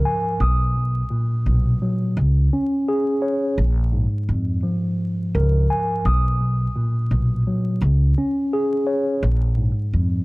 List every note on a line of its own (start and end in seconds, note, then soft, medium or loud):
0.00 0.40 A#1 medium
0.00 0.40 G#2 medium
0.00 0.40 F3 medium
0.00 0.40 A#4 medium
0.05 0.40 G#5 medium
0.40 1.01 B1 medium
0.40 2.17 D#6 medium
0.75 2.17 B1 medium
1.10 2.16 A#2 medium
1.46 1.77 B1 medium
1.82 2.17 F#3 medium
2.17 2.47 C#2 loud
2.53 3.58 C#4 medium
2.88 3.58 G#4 loud
3.22 3.57 C#5 medium
3.58 4.05 A#1 loud
3.58 6.05 A#1 medium
3.92 6.04 G#2 medium
4.29 4.59 F2 medium
4.63 6.05 F3 medium
5.35 5.65 C#2 medium
5.35 6.05 A#4 medium
5.70 6.05 G#5 medium
6.05 6.66 B1 medium
6.05 7.82 D#6 medium
6.41 7.82 B1 medium
6.76 7.81 A#2 medium
7.11 7.41 B1 medium
7.47 7.82 F#3 medium
7.81 8.12 C#2 loud
8.18 9.23 C#4 medium
8.53 9.23 G#4 loud
8.87 9.22 C#5 medium
9.23 9.70 A#1 loud
9.23 10.24 A#1 medium
9.57 10.24 G#2 medium
9.93 10.24 F2 medium